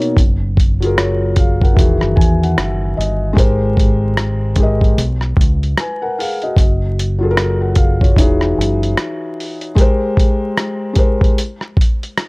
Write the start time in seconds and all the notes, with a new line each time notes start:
Already playing: B2 A#3 D#4 C#5
0.02 closed hi-hat
0.17 F#1, kick, closed hi-hat
0.57 kick, closed hi-hat
0.80 F#3 F4 G#4, closed hi-hat
0.86 A#4
0.97 F4 C#5, cross-stick, closed hi-hat
1.36 G#4 F5, kick, closed hi-hat
1.61 A#4 F#5, kick, closed hi-hat
1.73 E1 D#3 E3 F#4, kick
1.79 G#4, closed hi-hat
2.01 F#1, cross-stick
2.16 E2 G#5, kick
2.21 closed hi-hat
2.43 F#5, closed hi-hat
2.58 F#1 E5, cross-stick, closed hi-hat
2.97 G1 D#5, closed hi-hat
3.33 G#3 G4 A#4, kick
3.37 G#1 C5, closed hi-hat
3.77 kick, closed hi-hat
4.17 cross-stick, closed hi-hat
4.56 G#3 G4, kick, closed hi-hat
4.61 A#4 D#5
4.81 kick, closed hi-hat
4.98 B1, closed hi-hat
5.21 cross-stick
5.37 C#2, kick
5.41 closed hi-hat
5.63 closed hi-hat
5.78 B4 G#5, cross-stick, closed hi-hat
6.02 A#4 F#5
6.19 G#4 F5, open hi-hat
6.42 F#4 D#5, closed hi-hat
6.56 F#1, kick, closed hi-hat
6.99 closed hi-hat
7.19 F#3 F4 G#4
7.24 A4
7.31 A#4
7.37 cross-stick, closed hi-hat
7.61 A#4 F#5
7.75 G#4 F5, kick, closed hi-hat
8.01 F4 C#5, kick, closed hi-hat
8.16 E1 E3 D#4 F#4, kick, closed hi-hat
8.21 G#4
8.41 cross-stick
8.58 F#1, closed hi-hat
8.83 closed hi-hat
8.97 cross-stick, closed hi-hat
9.40 open hi-hat
9.61 closed hi-hat
9.75 G#3 G4 A#4, kick, closed hi-hat
9.81 C5
10.17 kick, closed hi-hat
10.57 cross-stick, closed hi-hat
10.93 G#3 G4 A#4, kick, closed hi-hat
10.99 C5
11.21 kick, closed hi-hat
11.38 closed hi-hat
11.61 cross-stick
11.77 kick
11.81 closed hi-hat
12.03 closed hi-hat
12.17 cross-stick, closed hi-hat